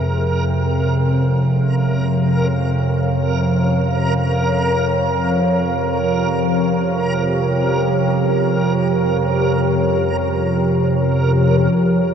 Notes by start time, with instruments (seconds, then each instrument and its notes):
Already playing: synth drone F2 C3, ambient pad F3 G#4 C#5 F5, synth texture A#4
4.39 ambient pad G4
11.73 synth drone F2 C3, ambient pad F4
11.77 synth texture C5